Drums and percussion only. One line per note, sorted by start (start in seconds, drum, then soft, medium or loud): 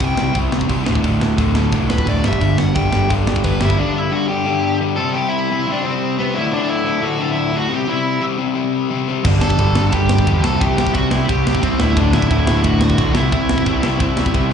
0.00 kick loud
0.17 snare loud
0.35 kick loud
0.35 open hi-hat medium
0.52 snare loud
0.61 kick medium
0.70 kick loud
0.70 open hi-hat medium
0.86 snare loud
0.95 kick medium
1.04 kick medium
1.04 open hi-hat medium
1.21 snare loud
1.38 kick loud
1.38 open hi-hat medium
1.55 snare loud
1.72 kick loud
1.72 open hi-hat medium
1.90 snare loud
1.98 kick medium
2.07 kick loud
2.07 open hi-hat medium
2.24 snare loud
2.33 kick medium
2.41 kick medium
2.41 open hi-hat medium
2.58 snare loud
2.75 kick loud
2.75 open hi-hat medium
2.92 snare loud
3.10 kick loud
3.10 open hi-hat medium
3.27 snare loud
3.36 kick medium
3.44 kick loud
3.44 open hi-hat medium
3.61 snare loud
3.70 kick medium
9.25 kick loud
9.25 crash loud
9.41 snare loud
9.50 kick medium
9.58 kick loud
9.58 ride medium
9.75 snare loud
9.92 kick loud
9.92 ride medium
10.09 snare loud
10.18 kick loud
10.27 kick loud
10.27 ride medium
10.44 snare loud
10.61 kick loud
10.61 ride medium
10.78 snare loud
10.87 kick medium
10.94 kick loud
10.94 ride medium
11.11 snare loud
11.29 kick loud
11.29 ride medium
11.47 snare loud
11.55 kick medium
11.63 kick medium
11.63 ride medium
11.80 snare loud
11.97 kick loud
11.97 ride medium
12.13 snare loud
12.22 kick medium
12.30 kick loud
12.30 ride medium
12.47 snare loud
12.64 kick loud
12.64 ride medium
12.81 snare loud
12.90 kick medium
12.98 kick loud
12.98 ride medium
13.15 snare loud
13.32 kick loud
13.32 ride medium
13.49 snare loud
13.58 kick medium
13.66 kick loud
13.66 ride medium
13.83 snare loud
14.00 kick loud
14.00 ride medium
14.17 snare loud
14.26 kick medium
14.34 kick loud
14.34 ride medium